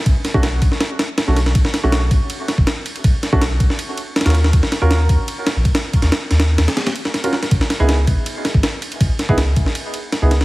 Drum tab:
RD |x---x---x---x---x---x---x---x---|x---x---x---x---x---x---x---x-x-|x---x---x---x---x---x---xxxxx---|x---x---x---x---x---x---x-x---x-|
SD |----o---o-----o-o---o---o---o-o-|--o-o---o-----------o---o-------|----o---o-----o---------ooooo-o-|--o-o---o-----------o-----o-----|
BD |o-----o-----o-------------------|o-----------o---------o---------|o-----o-----o-------------------|o-----------o-----------o-----o-|

RD |x-x---x-x---x-x-x-x-x---x-x---x-|x---x---x---x---x---x---x---x-x-|x---x---x---x---x---x---x---x---|
SD |o-o---o-o---o-o-o-o---o-o---o-o-|--o-o---o-----------o---o-------|----o---o-----o---------o---o-o-|
BD |--------------------------------|o-----------o---------o---------|o-----o-----o-------------------|